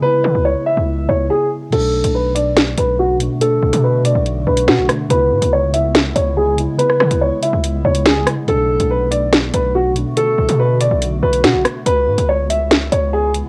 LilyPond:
<<
  \new Staff \with { instrumentName = "Grand piano" } { \time 4/4 \key b \dorian \tempo 4 = 142 b'4 cis''8 e''4 cis''8 gis'8 r8 | a'4 b'8 d''4 b'8 fis'8 r8 | a'4 b'8 d''4 b'8 fis'8 r8 | b'4 cis''8 e''4 cis''8 gis'8 r8 |
b'4 cis''8 e''4 cis''8 gis'8 r8 | a'4 b'8 d''4 b'8 fis'8 r8 | a'4 b'8 d''4 b'8 fis'8 r8 | b'4 cis''8 e''4 cis''8 gis'8 r8 | }
  \new Staff \with { instrumentName = "Ambient pad" } { \time 4/4 \key b \dorian << { <cis gis e'>2. r4 | <d a fis'>1~ | <d a fis'>1 | <cis gis e'>1~ |
<cis gis e'>1 | <d a fis'>1~ | <d a fis'>1 | <cis gis e'>1 | } \\ { b2. r4 | b1~ | b1~ | b1~ |
b1~ | b1~ | b1 | b1 | } >> }
  \new Staff \with { instrumentName = "Synth keys" } { \time 4/4 \key b \dorian <cis b e'>4. r16 <cis b e'>8. <cis b e'>4~ <cis b e'>16 r16 | <b, a d'>8. <b, a d'>8. <b, a d'>4.~ <b, a d'>16 r16 <b, a d'>8 | <b, a d'>8. <b, a d'>8. <b, a d'>8. r16 <b, a d'>8. r16 <b, a d'>8 | <cis b e'>8. <cis b e'>8. <cis b e'>4.~ <cis b e'>16 r16 <cis b e'>8 |
<cis b e'>8. <cis b e'>8. <cis b e'>8. r16 <cis b e'>8. r16 <cis b e'>8 | <b, a d'>8. <b, a d'>8. <b, a d'>4.~ <b, a d'>16 r16 <b, a d'>8 | r1 | r1 | }
  \new Staff \with { instrumentName = "808-style bass" } { \clef bass \time 4/4 \key b \dorian r8 cis16 cis,8 r8 cis,8. cis,8 r4 | b,,8. b,,4.~ b,,16 b,,4~ b,,16 r16 | r8 b,,16 b,4 b,,8. b,,8 b,16 b,,16 r8 | cis,8 gis,16 cis,4.~ cis,16 cis,4~ cis,16 r16 |
r8 cis16 cis,8 r8 cis,8. cis,4 r8 | b,,8. b,,4.~ b,,16 b,,4~ b,,16 r16 | r8 b,,16 b,4 b,,8. b,,8 b,16 b,,16 r8 | cis,8 gis,16 cis,4.~ cis,16 cis,4~ cis,16 r16 | }
  \new DrumStaff \with { instrumentName = "Drums" } \drummode { \time 4/4 r4 r4 r4 r4 | <cymc hh>8. hh16 r8 hh8 <hh sn>8 hh8 r8 hh8 | hh8. hh16 r8 hh8 hh8. hh16 <hh sn>8 <hh ss>8 | hh8. hh16 r8 hh8 <hh sn>8 hh8 r8 hh8 |
hh16 ss16 ss16 hh16 r8 hh8 hh8. hh16 <hh sn>8 <hh ss>8 | hh8. hh16 r8 hh8 <hh sn>8 hh8 r8 hh8 | hh8. hh16 r8 hh8 hh8. hh16 <hh sn>8 <hh ss>8 | hh8. hh16 r8 hh8 <hh sn>8 hh8 r8 hh8 | }
>>